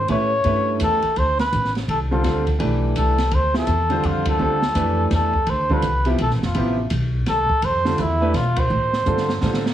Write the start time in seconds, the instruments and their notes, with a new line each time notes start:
0.08 upright bass A2, grand piano A3 C#4 E4 G4 B4, muted trumpet C#5, ride
0.44 upright bass G2, grand piano A3 C#4 E4 G4 B4, ride
0.80 upright bass E2, muted trumpet A4, hi-hat pedal, ride
1.02 muted upright bass stroke, ride
1.16 upright bass D2, muted trumpet C5, ride
1.39 muted trumpet B4, snare, ride
1.52 upright bass A1, hi-hat pedal, ride
1.64 snare
1.75 snare, ride
1.88 upright bass C2, muted trumpet A4, ride
2.11 grand piano D3 G3 C4 F4 A4, muted trumpet F4
2.23 upright bass D2, grand piano D3 G3 C4 F4 A4, snare, ride
2.47 kick, ride
2.59 upright bass B1, grand piano E3 A3 D4 G4 B4, ride
2.96 upright bass C2, muted trumpet A4, hi-hat pedal, ride
3.18 snare, ride
3.31 upright bass D2, muted trumpet C5, ride
3.54 grand piano C3 F3 B3 E4 G4, muted trumpet A4, snare
3.67 upright bass E2, hi-hat pedal, ride
3.90 grand piano D3 G3 C4 F4 C5, ride
4.03 upright bass F2, muted trumpet F4, ride
4.25 muted trumpet A4, kick, ride
4.39 upright bass D2, grand piano D3 G3 C4 F4 A4
4.62 snare
4.75 upright bass F2, grand piano E3 A3 D4 G4 B4, hi-hat pedal, ride
5.11 upright bass E2, muted trumpet A4, snare, ride
5.34 kick
5.46 upright bass D2, muted trumpet C5, ride
5.70 grand piano D3 G3 C4 F4 A4, muted trumpet B4, kick
5.82 upright bass C2, hi-hat pedal, ride
6.05 grand piano C3 F3 B3 E4 G4, ride
6.18 upright bass B1, muted trumpet A4, ride
6.30 upright bass A1, snare
6.42 upright bass F1, muted trumpet F4, snare
6.54 upright bass A1, grand piano C3 F3 B3 E4 G4, ride
6.90 upright bass B1, hi-hat pedal, ride
7.26 upright bass C2, muted trumpet A4, snare, ride
7.49 muted upright bass stroke, kick
7.62 upright bass F2, muted trumpet C5, ride
7.85 grand piano D3 G3 C4 F4 A4, snare
7.98 upright bass E2, muted trumpet E4, hi-hat pedal, ride
8.21 grand piano E3 A3 D4 G4 B4
8.34 upright bass B2, muted trumpet F4, snare, ride
8.56 muted trumpet C5, kick, ride
8.70 upright bass A2
8.93 snare
9.06 upright bass G2, grand piano D3 G3 C4 F4 A4, hi-hat pedal
9.17 snare
9.29 snare
9.41 upright bass A2, grand piano D3 G3 C4 F4 A4, snare
9.54 snare
9.66 snare